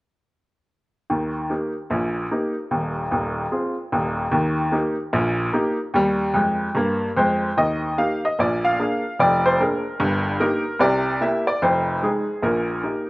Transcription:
1.10 D#2 D#3
1.50 A#3 D#4 G4
1.90 A#1 A#2
2.31 A#3 D#4 G4
2.71 D#1 D#2
3.11 D#1 D#2
3.52 C4 F4 G#4
3.92 D#1 D#2
4.31 D#2 D#3
4.72 A#3 D#4 G4
5.13 A#1 A#2
5.53 A#3 D#4 G4
5.94 D#2 G3
6.34 F2 G#3
6.75 G2 A#3
7.17 F2 G#3 C5
7.57 D#2 D#3 D#5
7.98 A#3 D#4 G4 F5
8.25 D#5
8.39 A#1 A#2 D5
8.65 F5
8.79 A#3 D4 G#4
9.19 F1 F2 D5
9.46 C5
9.60 A#3 D4 G#4 A#4
10.00 G1 G2
10.40 A#3 D#4 G4 A#4
10.79 C2 C3 D5
11.21 A#3 E4 G4 E5
11.47 D5
11.62 F1 F2 C5
12.02 G#3 D#4 G#4
12.43 A#1 A#2 A#4
12.83 A#3 D#4 G4

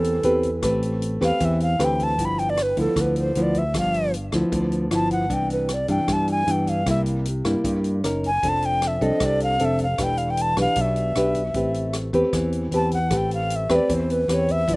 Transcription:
Already playing: E2 E3 C4 G4 A4 B4
0.04 closed hi-hat
0.23 E2 C4 G4 B4, closed hi-hat
0.43 kick, closed hi-hat
0.62 A1 A3 C4 G4 B4, kick, cross-stick, closed hi-hat
0.83 closed hi-hat
1.02 closed hi-hat
1.21 E2 C4 G4 B4 F5, kick, cross-stick, closed hi-hat
1.40 E2 E3, kick, closed hi-hat
1.45 E5
1.60 F5, closed hi-hat
1.79 D2 C4 G4 B4, cross-stick, closed hi-hat
1.84 G5
1.99 kick, closed hi-hat
2.03 A5
2.18 G1 G2 F3 B3 E4, kick, closed hi-hat
2.25 B5
2.39 G5, closed hi-hat
2.50 D5
2.57 cross-stick, closed hi-hat
2.62 B4
2.77 D2 F3 B3 E4 A4, kick, closed hi-hat
2.96 D2 D3, kick, cross-stick, closed hi-hat
3.01 B4
3.16 C5, closed hi-hat
3.35 D2 F3 B3 E4, closed hi-hat
3.42 D5
3.55 E5, kick, closed hi-hat
3.74 G1 G2 F3 B3, kick, cross-stick, closed hi-hat
3.79 F5
3.94 closed hi-hat
4.14 closed hi-hat
4.32 D2 F3 B3 E4, kick, cross-stick, closed hi-hat
4.52 D2 D3, kick, closed hi-hat
4.72 closed hi-hat
4.91 G1 F3 B3 E4, cross-stick, closed hi-hat
4.95 A5
5.11 F#5, kick, closed hi-hat
5.30 C2 C3 E3 B3 D4 G5, kick, closed hi-hat
5.50 B4, closed hi-hat
5.69 cross-stick, closed hi-hat
5.74 D5
5.88 G2 E3 B3 D4 G5, kick, closed hi-hat
6.08 G2, kick, cross-stick, closed hi-hat
6.13 A5
6.28 G#5, closed hi-hat
6.47 G2 E3 B3 D4, closed hi-hat
6.51 G5
6.67 F5, kick, closed hi-hat
6.86 C2 C3 G3 A#3 E4 E5, kick, cross-stick, closed hi-hat
7.06 closed hi-hat
7.25 closed hi-hat
7.45 G2 G3 A#3 E4, kick, cross-stick, closed hi-hat
7.64 G2, kick, closed hi-hat
7.84 closed hi-hat
8.04 F#1 C#4 D#4 A#4, cross-stick, closed hi-hat
8.23 G#5, kick, closed hi-hat
8.43 F1 F3 C4 D4 A4, kick, closed hi-hat
8.49 A5
8.62 G5, closed hi-hat
8.82 cross-stick, closed hi-hat
8.87 E5
9.01 C2 C4 D4 A4 D#5, kick, closed hi-hat
9.20 C2 C3, kick, cross-stick, closed hi-hat
9.25 D5
9.40 F5, closed hi-hat
9.59 F1 C4 D4 A4, closed hi-hat
9.65 E5
9.79 kick, closed hi-hat
9.84 F5
9.98 E1 E3 D4 G4 B4, kick, cross-stick, closed hi-hat
10.03 G5
10.18 F5, closed hi-hat
10.30 G5
10.37 closed hi-hat
10.42 A5
10.57 B1 D4 G4 B4, kick, cross-stick, closed hi-hat
10.61 F5
10.76 B1 B2, kick, closed hi-hat
10.81 E5
10.96 closed hi-hat
11.15 B1 D4 G4 B4, cross-stick, closed hi-hat
11.35 kick, closed hi-hat
11.54 A1 A3 C4 G4 B4, kick, closed hi-hat
11.74 closed hi-hat
11.93 cross-stick, closed hi-hat
12.13 E2 C4 G4 B4, kick, closed hi-hat
12.33 E2 E3, kick, cross-stick, closed hi-hat
12.53 closed hi-hat
12.71 E2 C4 G4 B4, closed hi-hat
12.75 A5
12.91 F#5, kick, closed hi-hat
13.11 A1 A3 C4 G4 B4, kick, cross-stick, closed hi-hat
13.17 G5
13.31 F5, closed hi-hat
13.50 closed hi-hat
13.56 E5
13.69 E2 C4 G4 B4, kick, cross-stick, closed hi-hat
13.75 D5
13.89 E2 E3, kick, closed hi-hat
13.94 C5
14.10 B4, closed hi-hat
14.28 E2 C4 G4 B4, cross-stick, closed hi-hat
14.33 C#5
14.48 E5, kick, closed hi-hat
14.68 G1 G2 F3 B3 E4, kick, closed hi-hat

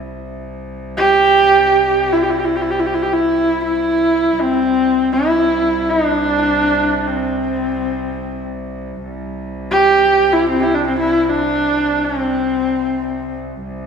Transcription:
Already playing: C2
0.97 G4
2.13 E4
2.23 G4
2.30 E4
2.39 G4
2.45 E4
2.56 G4
2.62 E4
2.71 G4
2.79 E4
2.87 G4
2.94 E4
3.03 G4
3.13 E4
3.64 E4
4.39 C2 C4
5.12 E4
5.90 D4
7.08 C4
9.04 C2
9.71 G4
10.33 E4
10.49 C4
10.60 E4 G4
10.74 D4
10.87 C4
10.99 E4
11.20 E4
11.29 D4
12.04 C4
13.62 C2

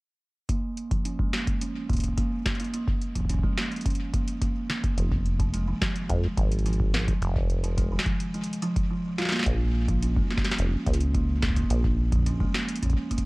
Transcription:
0.49 A#3, kick, closed hi-hat
0.77 closed hi-hat
0.91 F3, kick, closed hi-hat
1.05 C#4, closed hi-hat
1.19 G#3, kick
1.33 A#3, snare
1.47 kick, closed hi-hat
1.61 C#4, closed hi-hat
1.89 A#3, kick, closed hi-hat
1.93 kick, closed hi-hat
1.96 kick, closed hi-hat
2.00 kick, closed hi-hat
2.03 closed hi-hat
2.08 kick
2.13 kick
2.17 A#3, kick, closed hi-hat
2.45 A#3, kick, snare, closed hi-hat
2.55 closed hi-hat
2.59 A#3, closed hi-hat
2.64 closed hi-hat
2.73 A#3, closed hi-hat
2.87 kick
3.01 closed hi-hat
3.15 F3, kick, closed hi-hat
3.20 kick
3.25 kick
3.29 C#4, kick, closed hi-hat
3.34 kick
3.39 kick
3.43 G#3, kick
3.57 A#3, snare
3.71 closed hi-hat
3.76 closed hi-hat
3.81 closed hi-hat
3.85 C#4, kick, closed hi-hat
3.90 closed hi-hat
3.95 closed hi-hat
4.14 A#3, kick, closed hi-hat
4.28 closed hi-hat
4.42 A#3, kick, closed hi-hat
4.70 A#3, snare, closed hi-hat
4.84 A#3, kick, closed hi-hat
4.98 F1 F3, closed hi-hat
5.12 kick
5.26 closed hi-hat
5.40 C3, kick, closed hi-hat
5.54 G#3, closed hi-hat
5.68 D#3
5.82 F3, kick, snare
5.96 closed hi-hat
6.10 F2 G#3, kick, closed hi-hat
6.38 G#1 F3, kick, closed hi-hat
6.52 closed hi-hat
6.59 closed hi-hat
6.66 F3, closed hi-hat
6.73 closed hi-hat
6.80 kick
6.94 F3, snare
7.08 F3, kick, closed hi-hat
7.22 F1 F3, closed hi-hat
7.36 kick
7.50 closed hi-hat
7.64 C3, closed hi-hat
7.78 G#3, kick, closed hi-hat
7.92 D#3
7.99 snare
8.06 F3, kick, closed hi-hat
8.20 closed hi-hat
8.34 G#3, closed hi-hat
8.43 closed hi-hat
8.53 closed hi-hat
8.62 F3, closed hi-hat
8.76 kick, closed hi-hat
8.90 F3
9.18 F4, snare, closed hi-hat
9.22 snare
9.25 snare
9.29 snare
9.32 A#3, snare, closed hi-hat
9.36 snare
9.39 snare
9.43 A#1 A#3, kick, snare, closed hi-hat
9.88 F3, kick, closed hi-hat
10.02 C#4, closed hi-hat
10.16 G#3, kick
10.30 A#3, snare
10.37 kick, snare
10.44 snare, closed hi-hat
10.51 snare
10.58 F1 C#4, closed hi-hat
10.86 C#2 A#3, kick, closed hi-hat
10.93 closed hi-hat
11.00 closed hi-hat
11.14 A#3, kick, closed hi-hat
11.43 A#3, kick, snare
11.50 kick
11.57 A#3, kick, closed hi-hat
11.64 kick
11.71 A#1 A#3, closed hi-hat
11.85 kick
12.13 F3, kick, closed hi-hat
12.16 kick
12.20 kick
12.23 kick
12.27 C#4, kick, closed hi-hat
12.30 kick
12.34 kick
12.37 kick
12.41 G#3, kick
12.55 A#3, snare
12.69 closed hi-hat
12.76 closed hi-hat
12.83 C#4, kick, closed hi-hat
12.86 kick
12.90 kick, closed hi-hat
12.93 kick
13.11 A#3, kick, closed hi-hat
13.18 kick, closed hi-hat

